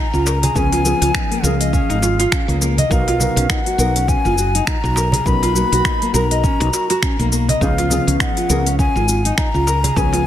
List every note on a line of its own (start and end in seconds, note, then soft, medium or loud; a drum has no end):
0.00 0.58 A#5 loud
0.13 0.48 C#2 medium
0.13 0.26 F4 medium
0.13 cabasa soft
0.26 0.36 A#4 medium
0.26 darbuka ka medium
0.26 darbuka tek medium
0.26 cabasa medium
0.43 0.55 G#4 medium
0.43 open hi-hat medium
0.43 darbuka dum medium
0.43 cabasa soft
0.55 0.92 C#2 medium
0.55 0.82 F3 medium
0.55 0.82 B3 medium
0.55 0.71 C#4 medium
0.55 0.82 C#4 medium
0.55 0.83 G#4 loud
0.55 1.46 G#5 loud
0.55 kick loud
0.55 cabasa medium
0.72 0.84 F4 loud
0.72 open hi-hat soft
0.72 darbuka tek medium
0.72 cabasa soft
0.84 1.40 F3 loud
0.84 1.41 B3 medium
0.84 1.41 C#4 medium
0.84 1.00 F4 medium
0.84 1.42 G#4 loud
0.84 darbuka ka medium
0.84 cabasa medium
1.01 1.10 C#2 medium
1.01 1.14 F4 loud
1.01 open hi-hat medium
1.01 darbuka tek soft
1.01 cabasa soft
1.14 1.30 D#4 medium
1.14 finger snap loud
1.14 kick loud
1.14 cabasa soft
1.31 1.38 A#3 medium
1.31 open hi-hat soft
1.31 cabasa soft
1.42 1.80 C#2 medium
1.42 2.87 F3 medium
1.42 2.88 C#4 medium
1.42 1.53 A#4 medium
1.42 2.62 F5 loud
1.42 cabasa medium
1.46 2.89 G#4 loud
1.61 1.73 D#5 medium
1.61 open hi-hat medium
1.61 cabasa soft
1.73 1.88 C#4 medium
1.73 kick loud
1.73 cabasa soft
1.90 2.25 G#1 loud
1.90 2.02 D#4 loud
1.90 open hi-hat soft
1.90 cabasa soft
2.02 2.18 F4 medium
2.02 darbuka ka medium
2.02 darbuka tek medium
2.02 cabasa medium
2.19 2.31 F4 loud
2.19 open hi-hat medium
2.19 darbuka tek medium
2.19 cabasa soft
2.32 2.47 C#4 medium
2.32 finger snap loud
2.32 kick loud
2.32 cabasa soft
2.48 2.83 C#2 medium
2.48 2.56 A#3 medium
2.48 open hi-hat soft
2.48 cabasa soft
2.61 2.77 A#3 medium
2.61 darbuka ka medium
2.61 cabasa medium
2.78 2.90 D#5 medium
2.78 open hi-hat medium
2.78 darbuka dum medium
2.78 cabasa soft
2.90 3.28 B1 loud
2.90 3.17 F#3 loud
2.90 3.17 B3 medium
2.90 3.06 D#4 medium
2.90 3.17 D#4 medium
2.90 3.18 A#4 loud
2.90 3.52 F5 medium
2.90 kick loud
2.90 cabasa soft
3.08 3.19 F4 loud
3.08 open hi-hat soft
3.08 darbuka tek medium
3.08 cabasa soft
3.19 3.76 F#3 medium
3.19 3.76 B3 medium
3.19 3.76 D#4 medium
3.19 3.36 F#4 medium
3.19 3.77 A#4 loud
3.19 darbuka ka medium
3.19 darbuka dum medium
3.19 cabasa medium
3.36 3.45 B1 medium
3.36 3.48 C#4 medium
3.36 open hi-hat medium
3.36 darbuka tek soft
3.36 cabasa soft
3.50 3.60 D#4 medium
3.50 4.10 F#5 medium
3.50 finger snap loud
3.50 kick loud
3.50 cabasa soft
3.66 3.79 F#4 medium
3.66 open hi-hat soft
3.66 cabasa soft
3.78 4.15 B1 medium
3.78 3.89 F#3 medium
3.78 3.89 B3 medium
3.78 3.89 D#4 medium
3.78 3.94 A#4 medium
3.78 3.90 A#4 medium
3.78 cabasa medium
3.96 4.07 C#4 medium
3.96 open hi-hat medium
3.96 cabasa soft
4.08 4.24 C#4 medium
4.08 4.68 G#5 loud
4.08 kick loud
4.08 cabasa soft
4.25 4.60 F#1 medium
4.25 4.37 F4 loud
4.25 cabasa soft
4.38 4.53 F#4 medium
4.38 cabasa medium
4.55 4.66 D#4 medium
4.55 open hi-hat medium
4.55 cabasa soft
4.67 4.77 D#4 medium
4.67 5.27 A#5 loud
4.67 finger snap loud
4.67 kick loud
4.67 cabasa soft
4.84 5.19 B1 medium
4.84 4.96 F#4 medium
4.84 cabasa soft
4.96 5.07 A#4 medium
4.96 darbuka ka medium
4.96 darbuka tek medium
4.96 cabasa medium
5.12 5.26 G#4 medium
5.12 open hi-hat medium
5.12 darbuka dum loud
5.12 cabasa soft
5.25 5.63 B1 medium
5.25 5.52 F#3 medium
5.25 5.52 B3 medium
5.25 5.42 C#4 medium
5.25 5.53 D#4 medium
5.25 5.53 A#4 medium
5.25 6.14 B5 loud
5.25 kick loud
5.25 cabasa soft
5.43 5.54 F4 loud
5.43 open hi-hat soft
5.43 darbuka tek medium
5.43 cabasa soft
5.55 6.11 F#3 medium
5.55 6.12 A#3 loud
5.55 6.11 B3 medium
5.55 6.12 D#4 medium
5.55 5.71 F#4 medium
5.55 darbuka ka soft
5.55 cabasa medium
5.72 5.80 B1 medium
5.72 5.84 F#4 loud
5.72 open hi-hat medium
5.72 darbuka tek soft
5.72 cabasa soft
5.85 6.01 D#4 medium
5.85 finger snap medium
5.85 kick loud
5.85 cabasa soft
6.02 6.09 A#3 medium
6.02 open hi-hat soft
6.02 cabasa soft
6.12 6.51 B1 medium
6.12 7.57 F#3 medium
6.12 7.59 D#4 medium
6.12 6.24 A#4 medium
6.12 7.28 A#5 loud
6.12 cabasa medium
6.16 7.59 A#4 loud
6.31 6.43 D#5 medium
6.31 open hi-hat medium
6.31 cabasa soft
6.44 6.59 C#4 medium
6.44 kick loud
6.44 cabasa soft
6.60 6.69 B1 loud
6.60 6.73 D#4 loud
6.60 open hi-hat soft
6.60 cabasa soft
6.73 6.88 F#4 medium
6.73 darbuka ka soft
6.73 darbuka tek medium
6.73 cabasa medium
6.90 7.02 F#4 loud
6.90 open hi-hat medium
6.90 darbuka tek medium
6.90 cabasa soft
7.02 7.18 C#4 medium
7.02 finger snap loud
7.02 kick loud
7.02 cabasa soft
7.19 7.54 B1 medium
7.19 7.27 A#3 medium
7.19 open hi-hat soft
7.19 cabasa soft
7.32 7.47 A#3 medium
7.32 darbuka ka soft
7.32 cabasa medium
7.49 7.61 D#5 medium
7.49 open hi-hat medium
7.49 darbuka ka soft
7.49 darbuka dum medium
7.49 cabasa soft
7.61 7.98 C#2 loud
7.61 7.88 F3 medium
7.61 7.88 B3 medium
7.61 7.88 C#4 medium
7.61 7.77 D#4 medium
7.61 7.89 G#4 loud
7.61 8.17 F5 medium
7.61 kick loud
7.61 cabasa soft
7.78 7.90 F4 loud
7.78 open hi-hat soft
7.78 darbuka tek medium
7.78 cabasa soft
7.90 8.46 F3 medium
7.90 8.47 B3 medium
7.90 8.47 C#4 medium
7.90 8.06 F4 medium
7.90 8.47 G#4 loud
7.90 darbuka ka medium
7.90 darbuka dum medium
7.90 cabasa medium
8.07 8.16 C#2 medium
8.07 8.19 C#4 medium
8.07 open hi-hat medium
8.07 darbuka tek soft
8.07 cabasa soft
8.20 8.30 D#4 medium
8.20 8.75 F#5 loud
8.20 finger snap medium
8.20 kick loud
8.20 cabasa soft
8.37 8.49 F4 medium
8.37 open hi-hat soft
8.37 cabasa soft
8.49 8.86 C#2 medium
8.49 8.59 F3 medium
8.49 8.60 B3 medium
8.49 8.60 C#4 medium
8.49 8.60 G#4 loud
8.49 8.65 A#4 medium
8.49 cabasa medium
8.67 8.78 C#4 medium
8.67 open hi-hat soft
8.67 cabasa soft
8.79 8.95 C#4 medium
8.79 9.34 G#5 loud
8.79 kick loud
8.79 cabasa soft
8.96 9.31 G#1 medium
8.96 9.07 F4 loud
8.96 cabasa soft
9.09 9.24 F4 medium
9.09 cabasa medium
9.25 9.37 D#4 medium
9.25 open hi-hat soft
9.25 cabasa soft
9.37 9.98 A#5 loud
9.37 finger snap medium
9.37 kick loud
9.37 cabasa soft
9.54 9.89 C#2 medium
9.54 9.67 F4 medium
9.54 cabasa soft
9.67 9.77 A#4 medium
9.67 darbuka ka soft
9.67 darbuka tek medium
9.67 cabasa medium
9.84 9.96 G#4 medium
9.84 open hi-hat medium
9.84 darbuka dum medium
9.84 cabasa soft
9.96 10.27 C#2 loud
9.96 10.23 F3 loud
9.96 10.23 B3 medium
9.96 10.12 C#4 medium
9.96 10.24 C#4 medium
9.96 10.24 G#4 loud
9.96 10.27 G#5 loud
9.96 kick loud
9.96 cabasa soft
10.13 10.25 F4 loud
10.13 open hi-hat soft
10.13 darbuka tek medium
10.13 cabasa soft